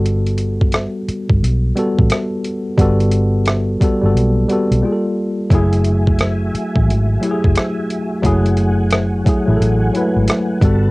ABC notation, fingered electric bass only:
X:1
M:4/4
L:1/16
Q:"Swing 16ths" 1/4=88
K:Glyd
V:1 name="Fingered electric bass" clef=bass
G,,,6 z G,,, B,,,2 z A,,, z4 | G,,,6 z G,,, B,,,2 z B,,, z4 | F,,,6 z A,,, ^G,,,2 z F,,, z4 | F,,,6 z A,,, A,,,2 z ^G,,, z2 =G,,,2 |]